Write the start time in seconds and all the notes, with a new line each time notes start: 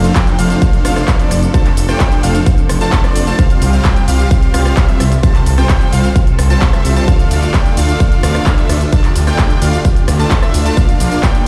Already playing: F3 C4 D4 A4
0.04 A3 D4 F4 C5 F5, closed hi-hat, shaker
0.15 A3 D4 F4 C5 G5, kick, clap, closed hi-hat, shaker
0.27 closed hi-hat, shaker
0.39 F1 A3 D4 F4 C5 F5, open hi-hat, shaker
0.50 closed hi-hat, shaker
0.62 kick, closed hi-hat, shaker
0.73 closed hi-hat, shaker
0.85 F1 A3 D4 F4 C5 F5, cross-stick, open hi-hat, shaker
0.96 cross-stick, closed hi-hat, shaker
1.08 kick, clap, closed hi-hat, shaker
1.20 A3 D4 F4 C5 D5, closed hi-hat, shaker
1.31 F1, cross-stick, open hi-hat, shaker
1.43 closed hi-hat, shaker
1.54 A3 D4 F4 C5 A5, kick, closed hi-hat, shaker
1.65 clap, closed hi-hat, shaker
1.77 F1, open hi-hat, shaker
1.89 A3 D4 F4 C5 G5, cross-stick, closed hi-hat, shaker
2.00 D4 G5, kick, clap, closed hi-hat, shaker
2.12 closed hi-hat, shaker
2.23 F1 A3 D4 F4 C5 F5, open hi-hat, shaker
2.35 closed hi-hat, shaker
2.46 kick, closed hi-hat, shaker
2.58 closed hi-hat, shaker
2.69 F1, cross-stick, open hi-hat, shaker
2.81 A3 D4 F4 C5 A5, closed hi-hat, shaker
2.92 kick, clap, closed hi-hat, shaker
3.04 A3 D4 F4 C5 D5, cross-stick, closed hi-hat, shaker
3.16 F1, open hi-hat, shaker
3.27 A3 D4 F4 C5 A5, closed hi-hat, shaker
3.39 C3 G3 C4 F4 G4 C5 F5, kick, closed hi-hat, shaker
3.50 closed hi-hat, shaker
3.62 C2, open hi-hat, shaker
3.73 G3 C4 F4 C5 F5, closed hi-hat, shaker
3.85 G3 C4 F4 C5 G5, kick, clap, closed hi-hat, shaker
3.96 closed hi-hat, shaker
4.08 C2 G3 C4 F4 C5 F5, open hi-hat, shaker
4.19 closed hi-hat, shaker
4.31 kick, closed hi-hat, shaker
4.42 closed hi-hat, shaker
4.54 C2 G3 C4 F4 C5 F5, cross-stick, open hi-hat, shaker
4.66 cross-stick, closed hi-hat, shaker
4.77 kick, clap, closed hi-hat, shaker
4.89 G3 C4 F4 C5 E5, closed hi-hat, shaker
5.00 C2, cross-stick, open hi-hat, shaker
5.12 closed hi-hat, shaker
5.23 G3 C4 F4 A4 C5 A5, kick, closed hi-hat, shaker
5.35 clap, closed hi-hat, shaker
5.46 C2, open hi-hat, shaker
5.58 G3 C4 F4 C5 G5, cross-stick, closed hi-hat, shaker
5.69 G3 C4 F4 C5 G5, kick, clap, closed hi-hat, shaker
5.81 closed hi-hat, shaker
5.92 C2 G3 C4 F4 C5 F5, open hi-hat, shaker
6.04 closed hi-hat, shaker
6.16 kick, closed hi-hat, shaker
6.27 closed hi-hat, shaker
6.39 C2, cross-stick, open hi-hat, shaker
6.50 G3 C4 F4 C5 A5, closed hi-hat, shaker
6.62 kick, clap, closed hi-hat, shaker
6.73 G3 C4 F4 C5 E5, cross-stick, closed hi-hat, shaker
6.85 C2, open hi-hat, shaker
6.96 G3 C4 F4 C5 A5, closed hi-hat, shaker
7.08 D3 A3 D4 F4 F5, kick, closed hi-hat, shaker
7.19 closed hi-hat, shaker
7.31 D2, open hi-hat, ride, shaker
7.43 A3 D4 F4 D5 F5, closed hi-hat, shaker
7.54 A3 D4 F4 D5 G5, kick, clap, closed hi-hat, shaker
7.66 closed hi-hat, shaker
7.77 D2 A3 D4 F4 D5 F5, open hi-hat, ride, shaker
7.89 closed hi-hat, shaker
8.00 kick, closed hi-hat, shaker
8.12 closed hi-hat, shaker
8.23 D2 A3 D4 F4 D5 F5, cross-stick, open hi-hat, ride, shaker
8.35 cross-stick, closed hi-hat, shaker
8.46 kick, clap, closed hi-hat, shaker
8.58 A3 D4 F4 D5 E5, closed hi-hat, shaker
8.69 D2, cross-stick, open hi-hat, ride, shaker
8.81 closed hi-hat, shaker
8.92 A3 D4 F4 G4 D5 A5, kick, closed hi-hat, shaker
9.04 clap, closed hi-hat, shaker
9.16 D2, open hi-hat, ride, shaker
9.27 A3 D4 F4 D5 G5, cross-stick, closed hi-hat, shaker
9.38 A3 D4 F4 G5, kick, clap, closed hi-hat, shaker
9.50 closed hi-hat, shaker
9.62 D2 A3 D4 F4 D5 F5, open hi-hat, ride, shaker
9.73 closed hi-hat, shaker
9.85 kick, closed hi-hat, shaker
9.96 closed hi-hat, shaker
10.08 D2, cross-stick, open hi-hat, ride, shaker
10.19 A3 D4 F4 D5 A5, closed hi-hat, shaker
10.31 kick, clap, closed hi-hat, shaker
10.43 A3 D4 F4 D5 E5, cross-stick, closed hi-hat, shaker
10.54 D2, open hi-hat, ride, shaker
10.66 A3 D4 F4 D5 A5, closed hi-hat, shaker
10.77 A#3 D4 F4 D5 F5, kick, closed hi-hat, shaker
10.89 closed hi-hat, shaker
11.00 A#1, open hi-hat, ride, shaker
11.12 A#3 D4 F4 D5 F5, closed hi-hat, shaker
11.23 A#3 D4 F4 D5 G5, kick, clap, closed hi-hat, shaker
11.35 closed hi-hat, shaker